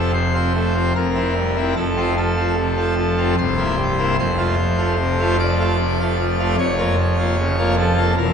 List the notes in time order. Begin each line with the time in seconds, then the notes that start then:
Already playing: F1 F2 C4 F4 A4
0.14 C3 C5
0.34 C4 F4
0.55 A3
0.75 C4 F4
0.95 F1 F2 A#4
1.15 C4 E4
1.36 G3
1.56 C4 E4
1.76 F1 F2 A4
1.97 C4 F4
2.17 F3 A4
2.37 C4 F4
2.57 C3
2.77 C4 F4
2.97 F3
3.18 C4 F4
3.38 C1 C2 C5
3.57 A#3 E4
3.77 G3
3.98 A#3 E4
4.19 F1 F2 C5
4.38 A3 F4
4.58 F3
4.78 A3 F4
4.99 C3
5.19 A3 F4
5.39 F3 D5
5.60 A3 F4
5.80 C3
6.00 A3 F4
6.20 F3
6.39 A3 F4
6.58 F1 F2 C#5
6.78 A#3 F4
6.99 F3
7.19 A#3 F4
7.39 C#3
7.59 A#3 F4
7.78 F3 A4
7.98 A#3 F4
8.18 E1 E2 A#4